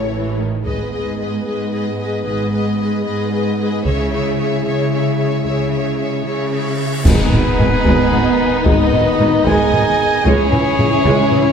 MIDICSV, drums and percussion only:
0, 0, Header, 1, 3, 480
1, 0, Start_track
1, 0, Tempo, 532387
1, 599, Time_signature, 6, 3, 24, 8
1, 10388, End_track
2, 0, Start_track
2, 0, Title_t, "Taiko and cinematic ensemble drums"
2, 599, Note_on_c, 9, 41, 35
2, 689, Note_off_c, 9, 41, 0
2, 3471, Note_on_c, 9, 41, 45
2, 3561, Note_off_c, 9, 41, 0
2, 6359, Note_on_c, 9, 41, 95
2, 6449, Note_off_c, 9, 41, 0
2, 6604, Note_on_c, 9, 45, 52
2, 6695, Note_off_c, 9, 45, 0
2, 6847, Note_on_c, 9, 45, 55
2, 6937, Note_off_c, 9, 45, 0
2, 7088, Note_on_c, 9, 41, 82
2, 7178, Note_off_c, 9, 41, 0
2, 7329, Note_on_c, 9, 45, 55
2, 7419, Note_off_c, 9, 45, 0
2, 7806, Note_on_c, 9, 41, 97
2, 7896, Note_off_c, 9, 41, 0
2, 8050, Note_on_c, 9, 45, 48
2, 8141, Note_off_c, 9, 45, 0
2, 8291, Note_on_c, 9, 45, 56
2, 8381, Note_off_c, 9, 45, 0
2, 8533, Note_on_c, 9, 41, 83
2, 8623, Note_off_c, 9, 41, 0
2, 8772, Note_on_c, 9, 45, 47
2, 8862, Note_off_c, 9, 45, 0
2, 9250, Note_on_c, 9, 41, 95
2, 9340, Note_off_c, 9, 41, 0
2, 9488, Note_on_c, 9, 45, 50
2, 9579, Note_off_c, 9, 45, 0
2, 9728, Note_on_c, 9, 45, 59
2, 9818, Note_off_c, 9, 45, 0
2, 9964, Note_on_c, 9, 41, 77
2, 10054, Note_off_c, 9, 41, 0
2, 10201, Note_on_c, 9, 45, 47
2, 10291, Note_off_c, 9, 45, 0
2, 10388, End_track
3, 0, Start_track
3, 0, Title_t, "Drums"
3, 6359, Note_on_c, 9, 35, 85
3, 6359, Note_on_c, 9, 49, 69
3, 6449, Note_off_c, 9, 35, 0
3, 6449, Note_off_c, 9, 49, 0
3, 10388, End_track
0, 0, End_of_file